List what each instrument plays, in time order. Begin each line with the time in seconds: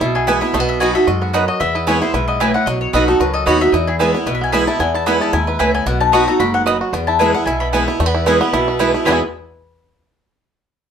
0.01 upright bass B1, steel-string acoustic guitar B2, five-string banjo E4
0.15 five-string banjo B3, mandolin G#4
0.27 steel-string acoustic guitar E3 G#3 B3 E4, mandolin B3 E4 B4 G#5, five-string banjo E4
0.41 steel-string acoustic guitar B3 E4, five-string banjo E4, mandolin E5
0.53 upright bass B1, steel-string acoustic guitar B2, five-string banjo A3, mandolin D#5
0.60 five-string banjo B3
0.69 mandolin E5
0.80 steel-string acoustic guitar F#3 B3 D#4 F#4, mandolin B3 F#4 D#5 G#5 B5, five-string banjo F#4
0.95 steel-string acoustic guitar D#4 F#4, five-string banjo A4, mandolin E5
1.07 upright bass F#2, steel-string acoustic guitar G#2, five-string banjo F#4, mandolin D#5
1.21 five-string banjo B3, mandolin F#4
1.33 steel-string acoustic guitar F#2, mandolin B3 F#4 B4 D#5 B5, five-string banjo D#4
1.48 five-string banjo F#4, mandolin D#5
1.60 upright bass E2, steel-string acoustic guitar E2, five-string banjo B3, mandolin E5
1.75 five-string banjo E4, mandolin D#5
1.87 steel-string acoustic guitar E3 G#3 B3 E4, mandolin B3 E4 B4 C#5 G#5, five-string banjo E4
2.02 steel-string acoustic guitar B3 E4, five-string banjo E4, mandolin C5
2.13 upright bass B1, steel-string acoustic guitar G#2, five-string banjo E4, mandolin B4
2.28 five-string banjo B3, mandolin D#5
2.40 steel-string acoustic guitar A2, mandolin B3 E4 B4 E5 G#5, five-string banjo E4
2.54 five-string banjo E4, mandolin F#5
2.66 upright bass B1, steel-string acoustic guitar B2, five-string banjo F#3, mandolin D#5
2.81 mandolin C#5
2.93 upright bass B1, steel-string acoustic guitar F#3 B3 D#4 F#4, mandolin B3 F#4 B4 D#5 B5, five-string banjo A4
3.08 five-string banjo D#4, steel-string acoustic guitar D#4 F#4, mandolin A4
3.20 upright bass C#2, steel-string acoustic guitar F#2, five-string banjo F#4, mandolin B4
3.34 five-string banjo A4, mandolin D#5
3.46 upright bass D#2, steel-string acoustic guitar F#3 B3 D#4 F#4, mandolin B3 F#4 C#5 D#5 B5, five-string banjo F#4
3.61 five-string banjo B3, steel-string acoustic guitar D#4 F#4, mandolin E5
3.72 upright bass E2, steel-string acoustic guitar E2, five-string banjo E4, mandolin D#5
3.87 five-string banjo E4, mandolin G#4
3.99 steel-string acoustic guitar E3 G#3 B3 E4, mandolin B3 E4 B4 G#5, five-string banjo E4
4.14 steel-string acoustic guitar B3 E4, five-string banjo E4
4.26 upright bass B1, steel-string acoustic guitar B2, five-string banjo E4, mandolin B4
4.35 mandolin E5
4.41 five-string banjo B3, mandolin G#5
4.52 steel-string acoustic guitar E3 G#3 B3 E4, mandolin B3 E4 B4 G#5 B5, five-string banjo E4
4.67 steel-string acoustic guitar B3 E4, five-string banjo E4, mandolin A5
4.80 upright bass E2, steel-string acoustic guitar E2, five-string banjo B3, mandolin G#5
4.94 five-string banjo E4, mandolin A5
5.06 steel-string acoustic guitar E3 G#3 B3 E4, mandolin B3 E4 B4 G#5 B5, five-string banjo B3
5.21 five-string banjo E4, mandolin A5
5.33 upright bass D#2, steel-string acoustic guitar G#2, five-string banjo E4, mandolin G#5
5.47 five-string banjo E4, mandolin B4
5.59 upright bass C#2, steel-string acoustic guitar A2, mandolin B3 E4 B4 E5 G#5, five-string banjo E4
5.74 five-string banjo B3, mandolin G#5
5.86 upright bass B1, steel-string acoustic guitar B2, five-string banjo B3, mandolin F#5
6.00 five-string banjo D#4, mandolin A5
6.12 steel-string acoustic guitar F#3 B3 D#4 F#4, mandolin B3 F#4 D#5 B5 C#6, five-string banjo F#4
6.28 steel-string acoustic guitar D#4 F#4, five-string banjo A4, mandolin A#5
6.40 upright bass F#1, steel-string acoustic guitar G#2, five-string banjo F#4, mandolin B5
6.54 five-string banjo B3, mandolin F#5
6.66 steel-string acoustic guitar F#2, mandolin B3 F#4 D#5 B5, five-string banjo D#4
6.81 five-string banjo F#4
6.93 upright bass E2, steel-string acoustic guitar E2, five-string banjo B3
7.07 five-string banjo E4, mandolin A5
7.19 steel-string acoustic guitar E3 G#3 B3 E4, mandolin B3 E4 B4 G#5, five-string banjo E4
7.34 steel-string acoustic guitar B3 E4, five-string banjo E4, mandolin F#5
7.46 upright bass B1, steel-string acoustic guitar B2, five-string banjo E4, mandolin G#5
7.60 five-string banjo B3, mandolin B5
7.73 steel-string acoustic guitar E3 G#3 B3 E4, mandolin B3 E4 B4 G#5, five-string banjo E4
7.88 steel-string acoustic guitar B3 E4, five-string banjo E4
7.99 upright bass E2, steel-string acoustic guitar E2, five-string banjo A3, fiddle B4
8.06 five-string banjo B3
8.14 five-string banjo E4
8.26 steel-string acoustic guitar E3 G#3 B3 E4, mandolin B3 E4 B4 G#5, five-string banjo E4
8.41 five-string banjo B3, steel-string acoustic guitar B3 E4
8.53 upright bass B1, steel-string acoustic guitar B2, five-string banjo E4
8.68 five-string banjo E4
8.79 steel-string acoustic guitar E3 G#3 B3 E4, mandolin B3 E4 B4 G#5, five-string banjo E4
8.94 steel-string acoustic guitar B3 E4, five-string banjo E4
9.05 upright bass E2, steel-string acoustic guitar E2 B2 E3 G#3 B3 E4, five-string banjo G#3 B3, mandolin B3 E4 B4 G#5 B5, fiddle B4
9.10 five-string banjo E4 G#4